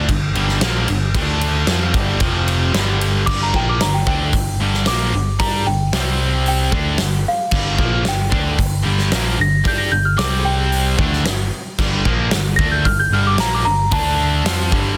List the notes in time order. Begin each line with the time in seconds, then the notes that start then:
0.09 G1 G2 D3, kick, ride
0.35 G1 G2 D3 G3, ride
0.48 snare
0.61 A#1 A#2 F3 A#3, snare, ride
0.88 G1 G2 D3, ride
1.14 D2 D3 A3 D4, kick, ride
1.41 ride
1.67 F2 F3 C4 F4, snare, ride
1.94 G1 G2 D3 G3, kick, ride
2.20 F1 F2 C3 F3, kick, ride
2.48 ride
2.74 G1 G2 D3 G3, snare, ride
3.01 ride
3.26 G1 G2 D3 G3 D6, kick, crash
3.43 A#5
3.54 A#1 A#2 F3 A#3 G5, kick
3.69 D6
3.80 G1 G2 D3 A#5, snare, open hi-hat
3.94 G5
4.06 D2 D3 A3 D4 G5, kick
4.33 G1 G2 D3, kick, open hi-hat
4.59 G1 G2 D3 G3
4.74 snare
4.86 A#1 A#2 F3 A#3 D6, snare, open hi-hat
5.13 G1 G2 D3
5.39 G2 G3 D4 G4 A#5, kick, open hi-hat
5.66 G1 G2 D3 G5
5.92 C2 C3 G3 C4, snare, open hi-hat
6.46 G5, open hi-hat
6.72 D2 D3 A3 D4, kick
6.98 G1 G2 D3, snare, open hi-hat
7.28 F5
7.51 G1 G2 D3 G3, kick, crash
7.77 A#1 A#2 F3 A#3, kick
8.04 G1 G2 D3, snare, open hi-hat
8.08 G5
8.30 D2 D3 A3 D4, kick
8.57 G1 G2 D3, kick, open hi-hat
8.83 G1 G2 D3 G3
8.98 snare
9.11 A#1 A#2 F3 A#3, snare, open hi-hat
9.37 G1 G2 D3 A#6
9.64 G2 G3 D4 G4 G6, kick, open hi-hat
9.78 A#6
9.90 G1 G2 D3 G6
10.05 F6
10.17 C2 C3 G3 C4 D6, snare, open hi-hat
10.45 G5
10.72 open hi-hat
10.97 D2 D3 A3 D4, kick
11.13 snare
11.24 G1 G2 D3, snare, open hi-hat
11.78 G1 G2 D3 G3, kick, crash
12.05 A#1 A#2 F3 A#3, kick
12.31 G1 G2 D3, snare, open hi-hat
12.56 D2 D3 A#6, kick
12.61 A3 D4
12.71 G6
12.85 G1 G2 D3 F6, kick, open hi-hat
12.99 G6
13.11 G1 G2 D3 G3 F6
13.27 D6
13.38 A#1 A#2 F3 A#3 A#5, snare, open hi-hat
13.54 D6
13.65 G1 G2 D3 A#5
13.91 D2 D3 A3 D4 A5, kick, open hi-hat
14.45 F2 F3 C4 F4, snare, open hi-hat
14.72 G1 G2 D3 G3, kick